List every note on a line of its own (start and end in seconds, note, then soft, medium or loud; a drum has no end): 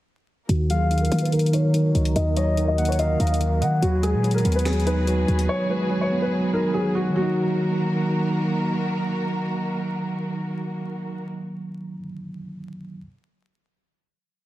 0.49 1.09 D#2 loud
0.49 0.90 D#3 medium
0.49 7.12 D#3 medium
0.49 3.79 A#3 medium
0.49 0.67 F#4 medium
0.49 3.79 F#4 medium
0.49 3.79 A#4 medium
0.49 closed hi-hat medium
0.70 1.74 F#3 medium
0.70 0.99 G#4 medium
0.70 1.29 F5 medium
0.70 closed hi-hat medium
0.91 1.31 D#3 medium
0.91 closed hi-hat medium
0.98 1.19 A#4 medium
0.98 closed hi-hat medium
1.05 closed hi-hat medium
1.12 1.92 D#3 loud
1.12 2.16 A#3 medium
1.12 closed hi-hat medium
1.19 1.31 B4 medium
1.19 closed hi-hat medium
1.25 closed hi-hat medium
1.32 1.73 D#3 medium
1.32 1.50 A#4 medium
1.32 closed hi-hat medium
1.39 closed hi-hat medium
1.46 closed hi-hat soft
1.53 2.57 D#4 medium
1.53 2.12 C#5 medium
1.53 closed hi-hat medium
1.74 2.14 D#3 medium
1.74 closed hi-hat medium
1.95 2.15 C#2 loud
1.95 2.99 D#5 medium
1.95 closed hi-hat soft
2.05 closed hi-hat medium
2.15 3.16 D#2 loud
2.15 2.56 D#3 medium
2.15 2.33 D#5 medium
2.15 closed hi-hat medium
2.36 3.41 F#3 medium
2.36 2.66 C#5 medium
2.36 2.76 D#5 medium
2.36 closed hi-hat medium
2.57 2.98 D#3 medium
2.57 closed hi-hat medium
2.68 2.85 D#5 medium
2.78 3.83 A#3 medium
2.78 2.98 F#5 medium
2.78 closed hi-hat soft
2.85 2.97 C#5 medium
2.85 closed hi-hat medium
2.92 closed hi-hat medium
2.99 3.39 D#3 medium
2.99 3.16 D#5 medium
2.99 3.19 F5 medium
2.99 closed hi-hat medium
3.20 3.63 D#2 loud
3.20 3.82 D#4 medium
3.20 3.40 D#5 medium
3.20 3.59 F5 medium
3.20 closed hi-hat medium
3.27 closed hi-hat medium
3.34 closed hi-hat medium
3.41 3.82 D#3 medium
3.41 closed hi-hat medium
3.61 3.81 D#3 loud
3.61 3.82 D#5 medium
3.61 3.79 F#5 medium
3.61 closed hi-hat medium
3.82 4.15 D#2 loud
3.82 4.23 F#3 medium
3.82 4.00 F#4 medium
3.82 7.12 F#4 medium
3.82 7.12 G#4 medium
3.82 7.12 B4 medium
3.82 closed hi-hat medium
4.03 5.07 G#3 medium
4.03 4.33 G#4 medium
4.03 closed hi-hat medium
4.14 4.43 A#2 loud
4.24 4.65 F#3 medium
4.24 closed hi-hat medium
4.31 4.52 A#4 medium
4.31 closed hi-hat medium
4.38 closed hi-hat soft
4.45 5.25 D#2 loud
4.45 5.49 B3 medium
4.45 closed hi-hat medium
4.52 4.64 B4 medium
4.52 closed hi-hat medium
4.59 closed hi-hat medium
4.65 5.06 F#3 medium
4.65 4.83 G#4 medium
4.65 finger snap loud
4.65 snare loud
4.65 closed hi-hat medium
4.73 closed hi-hat medium
4.80 closed hi-hat soft
4.87 5.91 D#4 medium
4.87 5.45 B4 medium
4.87 closed hi-hat medium
5.07 5.48 F#3 medium
5.07 closed hi-hat medium
5.28 5.48 D#2 loud
5.28 6.32 F#4 medium
5.28 closed hi-hat soft
5.39 closed hi-hat medium
5.49 5.90 F#3 medium
5.49 5.67 C#5 loud
5.70 6.74 G#3 medium
5.70 5.99 B4 medium
5.91 6.31 F#3 medium
6.01 6.19 C#5 medium
6.11 7.16 B3 medium
6.22 6.31 B4 medium
6.32 6.73 F#3 medium
6.53 7.16 D#4 medium
6.53 6.71 A#4 medium
6.74 7.13 F#3 medium
6.74 6.92 G#4 medium
6.95 7.12 F#4 medium
6.95 7.16 F#4 medium
7.10 11.92 D#3 medium
7.10 11.94 F#3 medium
7.16 11.25 D#3 medium
7.16 11.25 A#3 medium
7.16 11.96 A#3 medium
7.16 8.37 F#4 medium
7.16 11.25 F#4 medium
7.16 11.25 A#4 medium
7.22 11.98 D#4 medium